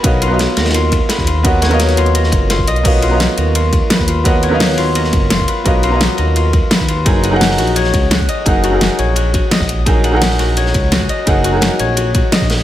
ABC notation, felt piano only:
X:1
M:4/4
L:1/16
Q:1/4=171
K:Blyd
V:1 name="Felt piano"
[B,FAcde]3 [F,B,cdea]12- [F,B,cdea] | [B,FAcdf]3 [F,B,Acde]12- [F,B,Acde] | [B,FAcde]3 [F,B,cdea]12- [F,B,cdea] | [B,FAcdf]3 [F,B,Acde]12- [F,B,Acde] |
[B,FAcde]3 [F,B,cdea]12- [F,B,cdea] | [F,DGAg]3 [F,DGAf]12- [F,DGAf] | [F,DGAf]3 [F,DGAf]12- [F,DGAf] | [F,DGAg]3 [F,DGAf]12- [F,DGAf] |
[F,DGAf]3 [F,DGAf]12- [F,DGAf] |]